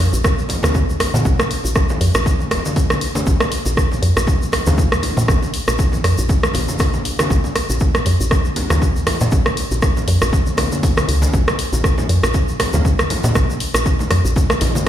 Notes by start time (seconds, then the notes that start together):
0.13 A#1, shaker
0.24 kick, cross-stick, muted conga, shaker
0.39 shaker
0.49 open hi-hat, muted conga, low conga
0.63 D#2, cross-stick, high conga, low conga, shaker
0.75 kick, muted conga, shaker
0.89 shaker
1.00 cross-stick, open hi-hat, low conga
1.14 A#2, muted conga, high conga, shaker
1.25 A#1, kick, shaker
1.39 cross-stick, muted conga, shaker
1.51 open hi-hat
1.64 A#1, muted conga, shaker
1.75 kick, cross-stick, shaker
1.89 muted conga, low conga, shaker
2.01 F2, open hi-hat
2.15 A#1, cross-stick, shaker
2.26 kick, muted conga, shaker
2.39 high conga, shaker
2.51 F1, cross-stick, open hi-hat, muted conga, high conga, low conga
2.65 high conga, shaker
2.76 kick, open hi-hat, muted conga, shaker
2.90 cross-stick, high conga, shaker
3.01 open hi-hat
3.15 muted conga, high conga, shaker
3.27 A#1, kick, shaker
3.40 cross-stick, muted conga, shaker
3.52 open hi-hat
3.65 A#1, muted conga, high conga, shaker
3.77 kick, cross-stick, shaker
3.92 muted conga, low conga, shaker
4.02 F2, open hi-hat
4.16 A#1, cross-stick, shaker
4.27 kick, muted conga, shaker
4.42 shaker
4.52 cross-stick, open hi-hat, muted conga, low conga
4.66 D#2, high conga, low conga, shaker
4.78 kick, muted conga, shaker
4.92 cross-stick, shaker
5.03 open hi-hat, low conga
5.17 A#2, muted conga, high conga, shaker
5.28 A#1, kick, cross-stick, shaker
5.42 muted conga, shaker
5.54 open hi-hat
5.68 A#1, cross-stick, muted conga, shaker
5.79 kick, shaker
5.92 muted conga, low conga, shaker
6.04 F2, cross-stick, open hi-hat
6.18 A#1, shaker
6.29 kick, muted conga, shaker
6.43 cross-stick, high conga, shaker
6.54 A#1, open hi-hat, muted conga, high conga, low conga
6.68 high conga, shaker
6.79 kick, cross-stick, open hi-hat, muted conga, shaker
6.93 high conga, shaker
7.05 open hi-hat
7.19 cross-stick, muted conga, high conga, shaker
7.30 A#1, kick, shaker
7.44 muted conga, shaker
7.56 cross-stick, open hi-hat
7.70 A#1, muted conga, high conga, shaker
7.80 kick, shaker
7.95 cross-stick, muted conga, low conga, shaker
8.06 F2, open hi-hat
8.20 A#1, shaker
8.31 kick, cross-stick, muted conga, shaker
8.45 shaker
8.56 open hi-hat, muted conga, low conga
8.70 D#2, cross-stick, high conga, low conga, shaker
8.82 kick, muted conga, shaker
8.96 shaker
9.07 cross-stick, open hi-hat, low conga
9.21 A#2, muted conga, high conga, shaker
9.32 A#1, kick, shaker
9.46 cross-stick, muted conga, shaker
9.57 open hi-hat
9.71 A#1, muted conga, high conga, shaker
9.82 kick, cross-stick, shaker
9.97 muted conga, low conga, shaker
10.08 F2, open hi-hat
10.22 A#1, cross-stick, shaker
10.33 kick, muted conga, shaker
10.46 high conga, shaker
10.57 C#2, cross-stick, open hi-hat, muted conga, high conga, low conga
10.72 high conga, shaker
10.83 kick, open hi-hat, muted conga, shaker
10.97 cross-stick, high conga, shaker
11.08 C#2, open hi-hat
11.22 muted conga, high conga, shaker
11.33 A#1, kick, shaker
11.48 cross-stick, muted conga, shaker
11.59 open hi-hat
11.73 A#1, muted conga, high conga, shaker
11.84 kick, cross-stick, shaker
11.98 muted conga, low conga, shaker
12.09 F2, open hi-hat
12.23 A#1, cross-stick, shaker
12.34 kick, muted conga, shaker
12.48 shaker
12.60 cross-stick, open hi-hat, muted conga, low conga
12.73 D#2, high conga, low conga, shaker
12.85 kick, muted conga, shaker
12.99 cross-stick, shaker
13.10 open hi-hat, low conga
13.24 A#2, muted conga, high conga, shaker
13.35 A#1, kick, cross-stick, shaker
13.50 muted conga, shaker
13.60 open hi-hat
13.74 A#1, cross-stick, muted conga, shaker
13.86 kick, shaker
13.99 muted conga, low conga, shaker
14.11 F2, cross-stick, open hi-hat
14.25 A#1, shaker
14.36 kick, muted conga, shaker
14.50 cross-stick, high conga, shaker
14.61 A#1, open hi-hat, muted conga, high conga, low conga
14.75 high conga, shaker